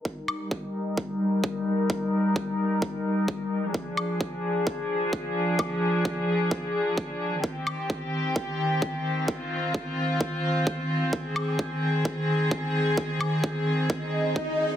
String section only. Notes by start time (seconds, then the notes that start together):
0.05 G3 D#4 A#4
3.74 F3 D4 G#4
7.44 D#3 C4 G4
9.28 F4
11.13 D#3 G#4